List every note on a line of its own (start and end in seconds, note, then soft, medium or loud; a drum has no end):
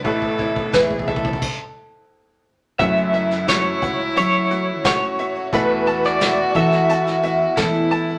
0.04 1.38 A1 medium
0.04 0.65 A1 medium
0.04 0.39 A2 medium
0.04 1.38 A2 medium
0.04 0.37 E3 medium
0.04 1.39 A3 medium
0.04 0.38 A3 medium
0.04 1.39 B3 medium
0.04 0.39 B3 medium
0.04 1.39 E4 medium
0.04 0.40 E4 medium
0.04 0.75 A4 loud
0.04 1.39 B4 medium
0.04 kick loud
0.22 kick medium
0.38 0.56 E3 medium
0.38 0.57 A3 medium
0.38 0.56 B3 medium
0.38 1.42 E4 medium
0.38 0.54 E4 medium
0.38 kick loud
0.56 0.73 A3 soft
0.56 0.73 B3 medium
0.56 0.73 E4 medium
0.56 kick loud
0.72 1.34 E2 medium
0.72 0.90 A2 loud
0.72 0.91 E3 medium
0.72 0.91 A3 medium
0.72 0.90 B3 loud
0.72 0.88 E4 loud
0.72 1.10 G#4 medium
0.72 1.42 B4 medium
0.72 kick loud
0.72 snare loud
0.90 1.07 A3 soft
0.90 1.08 B3 medium
0.90 1.07 E4 medium
0.90 kick loud
0.99 kick loud
1.07 1.24 E3 medium
1.07 1.25 A3 medium
1.07 1.24 B3 medium
1.07 1.22 E4 medium
1.07 1.42 A4 medium
1.07 1.42 E5 medium
1.07 kick loud
1.16 kick loud
1.23 1.43 A3 medium
1.23 1.42 B3 medium
1.23 1.41 E4 medium
1.23 kick loud
1.33 kick loud
1.42 kick loud
1.42 crash loud
2.79 5.48 F#1 medium
2.79 3.13 F#2 medium
2.79 5.48 F#2 medium
2.79 3.69 F#2 loud
2.79 3.13 C#3 medium
2.79 3.12 E3 medium
2.79 5.48 A3 medium
2.79 3.13 A3 medium
2.79 5.48 C#4 medium
2.79 3.14 C#4 medium
2.79 5.49 E4 medium
2.79 4.85 E4 loud
2.79 5.49 F#4 medium
2.79 3.14 F#4 medium
2.79 5.49 C#5 medium
2.79 3.48 E5 loud
2.79 3.81 F#5 loud
2.79 kick loud
2.79 closed hi-hat medium
2.97 closed hi-hat soft
3.13 3.47 E3 medium
3.13 3.47 A3 medium
3.13 3.48 C#4 medium
3.13 3.48 F#4 medium
3.13 4.15 E5 medium
3.13 closed hi-hat medium
3.31 snare soft
3.31 closed hi-hat soft
3.47 3.99 F#2 medium
3.47 3.99 C#3 medium
3.47 3.99 E3 loud
3.47 3.99 A3 medium
3.47 3.99 C#4 medium
3.47 4.49 F#4 medium
3.47 3.98 F#4 medium
3.47 4.16 C#5 loud
3.47 snare loud
3.47 closed hi-hat medium
3.82 4.12 C#2 medium
3.82 4.84 F#5 medium
3.82 kick loud
3.82 closed hi-hat medium
3.99 4.15 E3 soft
3.99 4.16 A3 soft
3.99 4.17 C#4 medium
3.99 4.16 F#4 medium
4.16 4.33 E3 medium
4.16 4.85 F#3 loud
4.16 4.34 A3 medium
4.16 4.33 C#4 medium
4.16 4.31 F#4 medium
4.16 4.85 C#5 loud
4.16 5.18 E5 medium
4.16 closed hi-hat loud
4.33 4.49 E3 soft
4.33 4.50 A3 soft
4.33 4.51 C#4 medium
4.33 4.50 F#4 soft
4.50 4.84 E3 medium
4.50 4.84 A3 medium
4.50 4.85 C#4 medium
4.50 5.53 F#4 medium
4.50 4.85 F#4 medium
4.50 closed hi-hat medium
4.84 5.18 F#2 medium
4.84 5.44 A2 loud
4.84 5.19 C#3 medium
4.84 5.17 E3 medium
4.84 5.18 A3 medium
4.84 5.19 C#4 medium
4.84 5.51 F#4 medium
4.84 5.19 F#4 medium
4.84 5.50 C#5 loud
4.84 5.53 F#5 loud
4.84 kick medium
4.84 snare loud
4.84 closed hi-hat loud
5.02 closed hi-hat soft
5.18 5.35 E3 medium
5.18 5.35 C#4 medium
5.18 5.34 F#4 medium
5.18 5.53 E5 medium
5.18 closed hi-hat medium
5.35 5.52 E3 medium
5.35 5.53 A3 medium
5.35 5.53 C#4 medium
5.35 5.52 F#4 medium
5.51 5.87 E2 medium
5.51 8.18 E2 medium
5.51 6.42 E2 loud
5.51 5.87 B2 medium
5.51 8.18 E3 medium
5.51 5.85 E3 medium
5.51 8.18 A3 medium
5.51 5.86 A3 medium
5.51 8.18 B3 medium
5.51 5.87 B3 medium
5.51 8.18 E4 medium
5.51 5.88 E4 medium
5.51 7.58 F#4 loud
5.51 6.54 A4 medium
5.51 8.18 B4 medium
5.51 6.06 B4 loud
5.51 8.18 E5 medium
5.51 kick loud
5.51 closed hi-hat medium
5.86 6.20 E3 medium
5.86 6.20 A3 medium
5.86 6.21 B3 medium
5.86 6.21 E4 medium
5.86 6.88 A5 medium
5.86 closed hi-hat medium
6.04 6.56 D5 loud
6.04 snare soft
6.04 closed hi-hat soft
6.20 6.72 E2 medium
6.20 6.72 B2 medium
6.20 6.72 E3 medium
6.20 6.72 A3 medium
6.20 6.71 B3 loud
6.20 6.70 E4 loud
6.20 7.22 E5 medium
6.20 snare loud
6.20 closed hi-hat medium
6.55 7.44 E3 loud
6.55 7.56 A4 medium
6.55 7.88 E5 loud
6.55 kick loud
6.55 closed hi-hat medium
6.71 6.87 E3 medium
6.71 6.88 A3 medium
6.71 6.89 B3 medium
6.71 6.88 E4 medium
6.71 snare soft
6.88 7.06 E3 medium
6.88 7.06 A3 medium
6.88 7.05 B3 medium
6.88 7.04 E4 medium
6.88 7.90 A5 medium
6.88 closed hi-hat loud
7.05 7.21 E3 soft
7.05 7.22 A3 soft
7.05 7.23 B3 medium
7.05 7.23 E4 soft
7.05 snare soft
7.22 7.57 E3 medium
7.22 7.57 A3 medium
7.22 7.58 B3 medium
7.22 7.58 E4 medium
7.22 8.18 E5 medium
7.22 closed hi-hat medium
7.56 7.91 E2 medium
7.56 8.18 E2 loud
7.56 7.91 B2 medium
7.56 7.90 E3 medium
7.56 7.91 A3 loud
7.56 7.92 B3 loud
7.56 8.18 E4 medium
7.56 7.92 E4 medium
7.56 8.18 A4 medium
7.56 kick medium
7.56 snare loud
7.56 closed hi-hat medium
7.74 closed hi-hat soft
7.91 8.08 E3 medium
7.91 8.09 A3 medium
7.91 8.08 B3 medium
7.91 8.07 E4 medium
7.91 8.18 A5 medium
7.91 closed hi-hat medium
8.08 8.18 E3 medium
8.08 8.18 A3 medium
8.08 8.18 B3 medium
8.08 8.18 E4 medium